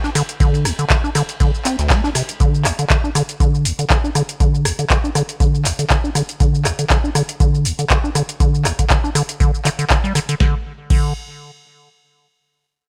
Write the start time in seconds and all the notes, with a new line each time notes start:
0.04 D4, snare, shaker
0.15 D3, cross-stick, snare, open hi-hat, ride, shaker
0.29 closed hi-hat, shaker
0.40 D3, kick, closed hi-hat, ride, shaker
0.54 ride, shaker
0.65 D2, cross-stick, open hi-hat, ride, shaker
0.79 D3, closed hi-hat, shaker
0.90 D3, kick, snare, clap, closed hi-hat, ride, shaker
1.04 D4, shaker
1.15 D3, cross-stick, open hi-hat, ride, shaker
1.29 closed hi-hat, ride, shaker
1.40 D3, kick, closed hi-hat, ride, shaker
1.55 shaker
1.65 C4, clap, open hi-hat, ride, shaker
1.79 D2, snare, closed hi-hat, shaker
1.90 A3, kick, snare, clap, closed hi-hat, ride, shaker
2.04 D4, snare, shaker
2.15 C3, cross-stick, snare, open hi-hat, ride, shaker
2.29 closed hi-hat, shaker
2.40 D3, kick, closed hi-hat, shaker
2.54 shaker
2.65 D2, cross-stick, clap, open hi-hat, shaker
2.79 D3, closed hi-hat, shaker
2.90 D3, kick, clap, closed hi-hat, shaker
3.04 D4, shaker
3.15 D3, cross-stick, open hi-hat, shaker
3.29 closed hi-hat, shaker
3.40 D3, kick, closed hi-hat, shaker
3.55 shaker
3.65 D2, open hi-hat, shaker
3.79 D3, closed hi-hat, shaker
3.90 D3, kick, clap, closed hi-hat, shaker
4.04 D4, shaker
4.15 D3, cross-stick, open hi-hat, shaker
4.29 closed hi-hat, shaker
4.40 D3, kick, closed hi-hat, shaker
4.55 shaker
4.65 D2, cross-stick, open hi-hat, shaker
4.79 D3, closed hi-hat, shaker
4.90 D3, kick, clap, closed hi-hat, shaker
5.04 D4, shaker
5.15 D3, cross-stick, open hi-hat, shaker
5.29 closed hi-hat, shaker
5.40 D3, kick, closed hi-hat, shaker
5.55 shaker
5.65 D2, clap, open hi-hat, shaker
5.79 D3, closed hi-hat, shaker
5.90 D3, kick, clap, closed hi-hat, shaker
6.04 D4, shaker
6.15 D3, cross-stick, open hi-hat, shaker
6.29 closed hi-hat, shaker
6.40 D3, kick, closed hi-hat, shaker
6.55 shaker
6.65 D2, cross-stick, clap, open hi-hat, shaker
6.79 D3, closed hi-hat, shaker
6.90 D3, kick, clap, closed hi-hat, shaker
7.04 D4, shaker
7.15 D3, cross-stick, open hi-hat, shaker
7.29 closed hi-hat, shaker
7.40 D3, kick, closed hi-hat, shaker
7.55 shaker
7.65 D2, open hi-hat, shaker
7.79 D3, closed hi-hat, shaker
7.90 D3, kick, clap, closed hi-hat, shaker
8.04 D4, shaker
8.15 D3, cross-stick, open hi-hat, shaker
8.29 closed hi-hat, shaker
8.40 D3, kick, closed hi-hat, shaker
8.55 shaker
8.65 D2, cross-stick, clap, open hi-hat, shaker
8.79 D3, kick, closed hi-hat, shaker
8.90 D3, kick, clap, closed hi-hat, shaker
9.04 D4, shaker
9.15 D3, cross-stick, open hi-hat, shaker
9.29 closed hi-hat, shaker
9.40 D3, kick, closed hi-hat, shaker
9.55 shaker
9.65 D3, clap, open hi-hat, shaker
9.79 D3, closed hi-hat, shaker
9.90 D3, kick, clap, closed hi-hat, shaker
10.04 G3, shaker
10.15 D3, cross-stick, open hi-hat, shaker
10.29 D3, closed hi-hat, shaker
10.40 D3, kick, snare
10.90 D3, kick, crash